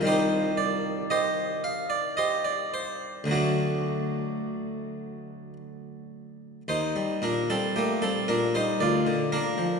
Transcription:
X:1
M:3/4
L:1/16
Q:1/4=56
K:Eblyd
V:1 name="Harpsichord"
[EGc]2 d2 [Gce]2 f d [Gce] d c2 | [A,D^F]8 z4 | [Ec]2 [DB] [CA] [B,G] [CA] [DB] [Ec] [Fd]2 [DB]2 |]
V:2 name="Harpsichord" clef=bass
[C,,E,G,C]12 | [D,,D,^F,]12 | E,, G, B,, G, A, G, B,, G, D,, D, B, F, |]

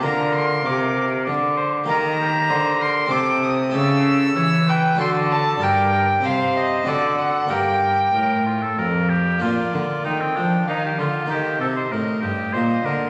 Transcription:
X:1
M:3/4
L:1/16
Q:1/4=96
K:Bb
V:1 name="Violin"
b2 c'2 d'2 z6 | [K:Gm] b6 c'2 d'2 e'2 | =e'6 g2 c'2 a2 | g4 f2 e2 d2 ^f2 |
g8 z4 | [K:Bb] d4 g4 f4 | e8 e4 |]
V:2 name="Oboe"
B4 B4 d2 c2 | [K:Gm] B2 G2 c2 B2 A2 z2 | A4 ^c2 =B2 A4 | B2 B2 c4 A4 |
B4 B2 F A B2 G2 | [K:Bb] F4 E C D2 E G F2 | G2 A c B2 G2 c2 B2 |]
V:3 name="Harpsichord"
[B,FB]12 | [K:Gm] [B,GB]8 [CGA]4 | [=EGA]8 [D^FA]4 | [DGB]4 [CGc]4 [C^FA]4 |
[B,GB]12 | [K:Bb] [B,DF]12 | [B,E]12 |]
V:4 name="Harpsichord" clef=bass
D,4 C,4 D,4 | [K:Gm] E,4 D,4 C,4 | ^C,4 =E,4 D,4 | G,,4 C,4 D,4 |
G,,4 A,,4 F,,4 | [K:Bb] B,,2 D,2 E,2 F,2 E,2 D,2 | E,2 C,2 A,,2 G,,2 B,,2 D,2 |]
V:5 name="Cello" clef=bass
D,4 C,4 D,4 | [K:Gm] E,4 D,4 C,4 | ^C,4 =E,4 D,4 | G,,4 C,4 D,4 |
G,,4 A,,4 F,,4 | [K:Bb] B,,2 D,2 E,2 F,2 E,2 D,2 | E,2 C,2 A,,2 G,,2 B,,2 D,2 |]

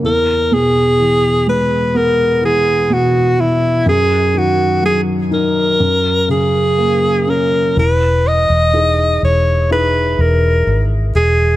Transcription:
X:1
M:4/4
L:1/16
Q:1/4=62
K:Elyd
V:1 name="Alto saxophone"
A2 G4 B2 A2 G2 F2 E2 | G2 F2 G2 A4 G4 A2 | B2 d4 c2 B2 A2 z2 G2 |]
V:2 name="Grand piano" clef=bass
E,,2 B,,2 E,2 G,2 B,2 E,2 B,,2 E,2 | F,,2 D,2 F,2 D2 F,,2 C,2 A,2 C2 | E,4 [DEG]4 [DEG]4 z4 |]
V:3 name="Fingered electric bass" clef=bass
z16 | z16 | E,,,3 E,,,3 E,,,4 E,,,2 G,,,2 E,,,2 |]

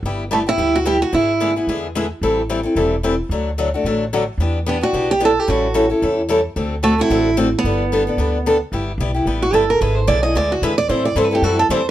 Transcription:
X:1
M:4/4
L:1/8
Q:"Swing" 1/4=222
K:G
V:1 name="Steel-string acoustic guitar"
z2 A, E2 F G F | E3 z4 z | z8 | z8 |
z2 B, F2 G A G | F3 z4 z | z2 A, E3 z B,- | B,6- B, z |
z4 z F A _B | B c d _e d F B d | c d (3c B G F A c z |]
V:2 name="Steel-string acoustic guitar"
[G,B,EG] z [G,B,EG] [B,EG] [G,B,EG] z [G,B,EG] z | [D,^G,B,E^G] z [D,G,B,EG] [B,EG] [D,G,B,EG] z [D,G,B,EG] z | [E,G,CEA] z [E,G,CEA] [CEA] [E,G,CEA] z [E,G,CEA] z | [D,F,A,DF] z [D,F,A,DF] [A,DF] [D,F,A,DF] z [D,F,A,DF] z |
[E,B,DG] z [E,B,DG] [B,DG] [E,B,DG] z [E,B,DG] z | [E,G,^CEA] z [E,G,CEA] [CEA] [E,G,CEA] z [E,G,CEA] z | [D,A,CFA] z [D,A,CFA] [CFA] [D,A,CFA] z [D,A,CFA] z | [G,B,DA] z [G,B,DA] [B,DA] [G,B,DA] z [G,B,DA] z |
[G,B,EG] z [G,B,EG] [B,EG] [G,B,EG] z [G,B,EG] z | [D,^G,B,E^G] z [D,G,B,EG] [B,EG] [D,G,B,EG] z [D,G,B,EG] z | [E,G,CEA] z [E,G,CEA] [CEA] [E,G,CEA] z [E,G,CEA] z |]
V:3 name="Upright bass" clef=bass
G,,,4 D,,4 | ^G,,,4 E,,4 | A,,,4 E,,,4 | D,,4 A,,,4 |
E,,4 B,,,4 | A,,,4 E,,4 | D,,4 A,,,4 | G,,,4 D,,4 |
G,,,2 B,,,2 A,,,2 G,,,2 | ^G,,,2 B,,,2 D,,2 E,,2 | A,,2 G,,2 F,,2 E,,2 |]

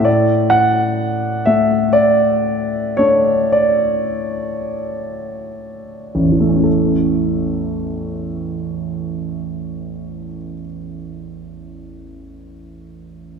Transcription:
X:1
M:12/8
L:1/8
Q:3/8=35
K:A
V:1 name="Grand piano"
d f2 e d2 c d2 z3 | [A,,,E,,E,A,CEA]12 |]
V:2 name="Grand piano"
A,,3 A,3 [A,D]6 | z12 |]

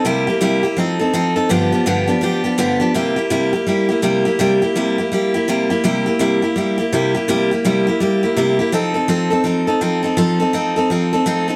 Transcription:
X:1
M:4/4
L:1/8
Q:"Swing" 1/4=166
K:Cmix
V:1 name="Steel-string acoustic guitar"
[C,G,B,EG] [B,EG] [C,G,B,EG] [B,EG] [F,C_EA] [CEA] [F,CEA] [CEA] | [G,,D,F,=B,DG] [F,B,DG] [G,,D,F,B,DG] [F,B,DG] [F,B,DG] [F,B,DG] [G,,D,F,B,DG] [F,B,DG] | [C,G,B,EG] [B,EG] [C,G,B,EG] [B,EG] [G,B,EG] [B,EG] [C,G,B,EG] [B,EG] | [C,G,B,EG] [B,EG] [C,G,B,EG] [B,EG] [G,B,EG] [B,EG] [C,G,B,EG] [B,EG] |
[C,G,B,EG] [B,EG] [C,G,B,EG] [B,EG] [G,B,EG] [B,EG] [C,G,B,EG] [B,EG] | [C,G,B,EG] [B,EG] [C,G,B,EG] [B,EG] [G,B,EG] [B,EG] [C,G,B,EG] [B,EG] | [F,C_EA] [CEA] [F,CEA] [CEA] [F,CEA] [CEA] [F,CEA] [CEA] | [F,C_EA] [CEA] [F,CEA] [CEA] [F,CEA] [CEA] [F,CEA] [CEA] |]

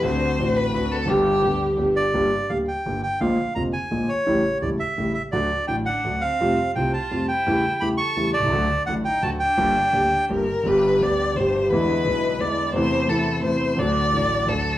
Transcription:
X:1
M:3/4
L:1/16
Q:1/4=170
K:G
V:1 name="Bandoneon"
z12 | z8 z2 d2- | [K:Dphr] d4 f2 g4 g2 | f4 b2 _a4 ^c2- |
^c4 d2 =e4 e2 | d4 g2 ^f4 =f2- | f4 g2 a4 g2- | g4 =b2 ^c'4 d2- |
d4 ^f2 g2 a2 g2- | g8 z4 | [K:G] z12 | z12 |
z12 | z12 |]
V:2 name="Violin"
c6 B4 A2 | G8 z4 | [K:Dphr] z12 | z12 |
z12 | z4 D2 D4 C2- | C4 C2 F4 =E2- | =E4 G2 A4 A,2- |
A,4 D2 E2 ^F2 D2- | D8 B4 | [K:G] B4 d4 c4 | B8 d4 |
c4 A4 c4 | d8 A4 |]
V:3 name="String section"
[CDF]4 [CDF]4 [CDF]4 | [B,DG]4 [B,DG]4 [B,DG]4 | [K:Dphr] z12 | z12 |
z12 | z12 | z12 | z12 |
z12 | z12 | [K:G] [B,DG]4 [B,DG]4 [G,DG]4 | [^G,DE]4 [G,DE]4 [G,DE]4 |
[E,A,CE]4 [E,A,CE]4 [E,A,CE]4 | [A,DF]4 [A,DF]4 [A,DF]4 |]
V:4 name="Grand piano" clef=bass
[D,,D,A,CF]4 [A,,,A,,D,A,CF]4 [D,,D,A,CF]4 | [G,,,G,,D,G,B,G]4 [D,,D,G,B,G]4 [G,,,G,,D,G,B,G]4 | [K:Dphr] [G,,,G,,D,G,B,G]2 z2 [D,,D,G,B,G]2 z2 [G,,,G,,D,G,B,G]2 z2 | [B,,,B,,D,_A,B,F]2 z2 [F,,,F,,D,A,B,F]2 z2 [B,,,B,,D,A,B,F]2 z2 |
[A,,,A,,^C,G,A,=E]2 z2 [=E,,,=E,,C,G,A,E]2 z2 [A,,,A,,C,G,A,E]2 z2 | [D,,D,^F,A,^F]2 z2 [A,,,A,,D,F,A,F]2 z2 [D,,D,F,A,F]2 z2 | [F,,C,F,G,A,F]2 z2 [C,,C,G,A,F]2 z2 [F,,C,F,G,A,F]2 z2 | [=E,,^C,=E,G,A,=E]2 z2 [E,,C,E,G,A,E]2 z2 [E,,C,E,G,A,E]2 z/2 =B,,,/2 =C,,/2 ^C,,/2 |
[D,,D,^F,A,^F]2 z2 [A,,,A,,D,F,A,F]2 z2 [D,,D,F,A,F]2 z2 | [G,,,G,,D,G,B,G]2 z2 [D,,D,G,B,G]2 z2 [G,,,G,,D,G,B,G]2 z2 | [K:G] [G,,,G,,D,G,B,G]4 [D,,D,G,B,G]4 [G,,,G,,B,,D,G,G]4 | [E,,D,E,^G,B,E]4 [B,,,B,,D,G,B,E]4 [E,,D,E,G,B,E]4 |
[E,,C,E,A,E]4 [E,,C,E,A,E]4 [E,,C,E,A,E]4 | [D,,D,F,A,F]4 [A,,,A,,D,F,A,F]4 [D,,D,F,A,F]4 |]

